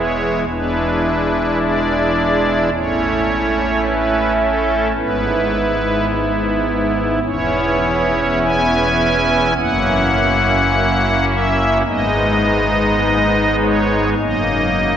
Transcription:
Already playing: E1 E2 G#3 B3 E4 C#5
0.48 E1 E2 G#3 D4 E4 B4
1.61 D5
2.74 A1 A2 A3 C#4 E4 C#5
3.86 B4
4.41 A4
4.96 G#1 G#2 B3 E4 B4
7.23 E1 E2 B3 C#4 E4 C#5
8.42 G#5
9.57 F#1 F#2 A#3 C#4 E4 F#5
11.29 E5
11.86 G#1 G#2 G#3 B3 D#4 D#5
13.60 C#5
14.19 F#1 F#2 A#3 D#4 D#5

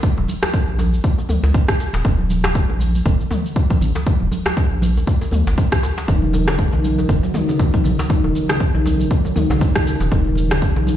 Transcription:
0.03 kick, shaker
0.17 D#1, muted conga, djembe tone, high conga
0.28 high conga, shaker
0.42 cross-stick, muted conga, djembe slap, shaker
0.54 kick, djembe tone, shaker
0.68 A#1, muted conga
0.79 high conga, djembe tone, shaker
0.93 high conga, shaker
1.04 kick, muted conga, shaker
1.18 djembe tone, shaker
1.29 mid tom, muted conga, djembe bass, shaker
1.43 C#2, djembe slap, djembe tone, shaker
1.54 kick, muted conga, shaker
1.68 kick, cross-stick, shaker
1.80 djembe tone, shaker
1.93 D#1, muted conga, djembe slap, shaker
2.05 D#1, kick, djembe tone, shaker
2.18 muted conga, high conga
2.30 high conga, shaker
2.44 cross-stick, muted conga, djembe slap, djembe tone, shaker
2.55 kick, shaker
2.69 A#1, muted conga, djembe tone
2.80 high conga, shaker
2.94 high conga, shaker
3.05 D#1, kick, muted conga, djembe tone, low conga, djembe bass, shaker
3.21 shaker
3.31 mid tom, muted conga, djembe tone, shaker
3.46 shaker
3.56 kick, muted conga, shaker
3.70 kick, high conga, djembe tone, shaker
3.81 A#1, low conga, shaker
3.95 djembe slap, muted conga, djembe tone, shaker
4.07 kick, shaker
4.20 D#1, muted conga, high conga
4.31 djembe tone, high conga, shaker
4.46 cross-stick, djembe slap, muted conga, shaker
4.57 kick, djembe tone, shaker
4.71 A#1, muted conga
4.82 high conga, shaker
4.96 high conga, djembe tone, shaker
5.07 kick, muted conga, shaker
5.21 djembe tone, shaker
5.31 D#2, mid tom, muted conga, djembe bass, shaker
5.47 G#1, djembe slap, shaker
5.58 kick, muted conga, djembe tone, shaker
5.72 kick, cross-stick, shaker
5.83 djembe tone, shaker
5.97 muted conga, djembe slap, shaker
6.08 E1 D#3, kick, djembe tone, shaker
6.22 muted conga, high conga
6.33 high conga, djembe tone, shaker
6.48 C#3, cross-stick, muted conga, djembe slap, shaker
6.59 kick, shaker
6.72 B1 D#3, muted conga, djembe tone
6.84 high conga, shaker
6.98 high conga, djembe tone, shaker
7.09 E1, kick, muted conga, low conga, djembe bass, shaker
7.23 F#3, shaker
7.34 D#3, mid tom, muted conga, djembe tone, shaker
7.49 C#3, shaker
7.60 D#3, kick, muted conga, djembe tone, shaker
7.74 kick, high conga, shaker
7.84 B1, low conga, shaker
7.99 djembe slap, muted conga, djembe tone, shaker
8.10 D#3, kick, shaker
8.24 E1, muted conga, high conga, djembe tone
8.35 high conga, shaker
8.49 C#3, cross-stick, muted conga, djembe slap, shaker
8.60 kick, djembe tone, shaker
8.74 B1 D#3, muted conga
8.86 djembe tone, high conga, shaker
9.00 high conga, shaker
9.10 kick, muted conga, shaker
9.25 F#3, djembe tone, shaker
9.36 D#3, mid tom, muted conga, djembe bass, shaker
9.50 B1 C#3, djembe slap, djembe tone, shaker
9.61 D#3, kick, muted conga, shaker
9.76 kick, cross-stick, shaker
9.87 djembe tone, shaker
10.00 E1, muted conga, djembe slap, shaker
10.11 E1 D#3, kick, djembe tone, shaker
10.25 muted conga, high conga
10.35 high conga, shaker
10.51 C#3, cross-stick, djembe slap, muted conga, djembe tone, shaker
10.62 kick, shaker
10.76 B1 D#3, muted conga, djembe tone
10.87 high conga, shaker

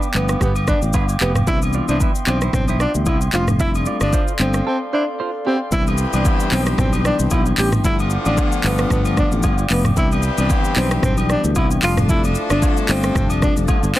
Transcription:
Already playing: B3 F5 G5 D6
0.03 shaker
0.14 G1 F3 A3 B3 D4, clap, high agogo
0.29 cross-stick, shaker
0.41 G1 B3 G4, kick, cross-stick, mid tom, shaker
0.55 high agogo, shaker
0.68 D4 B4, kick, cross-stick, shaker
0.82 A1, shaker
0.93 G1 D4 B4, kick, high agogo, low woodblock, shaker
1.09 shaker
1.21 F1 B3 G4, clap, high agogo, shaker
1.35 cross-stick, mid tom, shaker
1.47 C2 E3 G3 B3 D4 E4 G4 E5 G5 C6, kick, shaker
1.62 high agogo, shaker
1.73 F4 D5, shaker
1.88 C2 E3 G3 B3 D4 E4 C5, high agogo, shaker
2.00 E4 B4, kick, shaker
2.15 shaker
2.27 B1 E3 G3 B3 C4 D4 F4 D5, clap, high agogo
2.41 E4 C5, cross-stick, shaker
2.53 B1 E3 G3 B3 C4 D4, kick, cross-stick, mid tom, shaker
2.68 E4 C5, high agogo, shaker
2.80 D4 F4 D5, cross-stick, shaker
2.94 D2 E3 G3 B3 D4, shaker
3.06 C2 E4, kick, high agogo, low woodblock, shaker
3.21 shaker
3.33 F1 G3 A3 C4 D4 F4 A4 C5 D5 F5, clap, high agogo, shaker
3.47 cross-stick, mid tom, shaker
3.60 G3 A3 C4 D4 E4 A4 E5, kick, shaker
3.75 high agogo, shaker
3.86 F4 D5, shaker
4.01 G1 D4, cross-stick, high agogo, shaker
4.13 F4 C5, kick, shaker
4.28 shaker
4.39 G1 G3 A3 C4 D4, clap, high agogo, shaker
4.54 cross-stick, shaker
4.67 C4 A4
4.93 D4 E4 C5
5.20 F4 C5
5.47 B3 C4 G4
5.72 C2 E3 G3 B3 C4 D4 E4 G4 E5 G5 C6, kick, shaker
5.87 high agogo, shaker
5.98 shaker
6.13 C2 E3 G3 B3 D4, high agogo, shaker
6.25 kick, low woodblock, shaker
6.40 shaker
6.51 B1 E3 G3 B3 C4 D4, clap, open hi-hat, high agogo
6.66 cross-stick, shaker
6.78 B1 E3 G3 B3 C4 D4, kick, cross-stick, mid tom, shaker
6.93 high agogo, shaker
7.05 D4, cross-stick, shaker
7.19 C2 E3 G3 B3 D4, shaker
7.31 B1 E4, kick, high agogo, low woodblock, shaker
7.46 shaker
7.58 A1 E3 G3 B3 D4 G4, clap, open hi-hat, high agogo, shaker
7.72 cross-stick, mid tom, shaker
7.84 G1 D3 F3 A3 B3 D4 E4 F4 D5 F5 D6, kick, shaker
7.99 high agogo, shaker
8.10 shaker
8.25 A1 F3 A3 B3 D4, high agogo, shaker
8.37 kick, low woodblock, shaker
8.52 shaker
8.64 G1 F3 A3 B3 D4, clap, open hi-hat, high agogo
8.78 cross-stick, shaker
8.90 G1 F3 A3 B3 D4, kick, cross-stick, mid tom, shaker
9.05 high agogo, shaker
9.17 D4, kick, cross-stick, shaker
9.32 A1 F3 A3 B3 D4, shaker
9.43 G1, kick, high agogo, low woodblock, shaker
9.58 shaker
9.70 F1 F3 A3 B3 D4, clap, open hi-hat, high agogo, shaker
9.85 cross-stick, mid tom, shaker
9.97 C2 E3 G3 B3 C4 D4 E4 G4 E5, kick, shaker
10.12 high agogo, shaker
10.23 shaker
10.38 C2 E3 G3 B3 D4, high agogo, shaker
10.50 kick, low woodblock, shaker
10.65 shaker
10.76 B1 E3 G3 B3 C4 D4, clap, open hi-hat, high agogo
10.91 cross-stick, shaker
11.03 B1 E3 G3 B3 C4 D4, kick, cross-stick, mid tom, shaker
11.17 high agogo, shaker
11.30 D4, cross-stick, shaker
11.44 D2 E3 G3 B3 D4, shaker
11.55 C2 E4, kick, high agogo, low woodblock, shaker
11.71 shaker
11.82 F1 F3 G3 A3 C4 D4 F4 A4 D5 F5, clap, open hi-hat, high agogo, shaker
11.97 cross-stick, mid tom, shaker
12.09 G3 A3 C4 D4 E4, kick, shaker
12.24 high agogo, shaker
12.35 shaker
12.50 G1 G3 A3 C4 D4, cross-stick, high agogo, shaker
12.62 kick, low woodblock, shaker
12.77 shaker
12.89 G1 G3 A3 C4 D4, clap, open hi-hat, high agogo, shaker
13.03 cross-stick, shaker
13.15 F1 G3 A3 C4 D4, kick, cross-stick, mid tom, shaker
13.30 high agogo, shaker
13.42 D4, kick, cross-stick, shaker
13.56 F1 G3 A3 C4 D4, shaker
13.68 kick, high agogo, low woodblock, shaker
13.83 G1, shaker
13.95 G3 A3 C4 D4, clap, open hi-hat, high agogo, shaker

